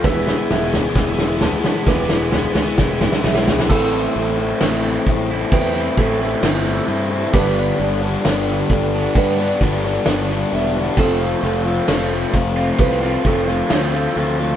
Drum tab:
CC |--------------------------------|x-------x-------x-------x-------|x-------x-------x-------x-------|x-------x-------x-------x-------|
SD |o-o-o-o-o-o-o-o-o-o-o-o-o-oooooo|--------o-------------o-o-------|--------o-------------o-o-------|--------o-------------o-o-------|
T2 |----o---o-----------------o-o---|--------------------------------|--------------------------------|--------------------------------|
FT |o-----o-o---o---o---o-o---o---o-|--------------------------------|--------------------------------|--------------------------------|
BD |o-------o-------o-------o-------|o-----------o---o---o-----------|o-----------o---o---o-----------|o-----------o---o---o-----------|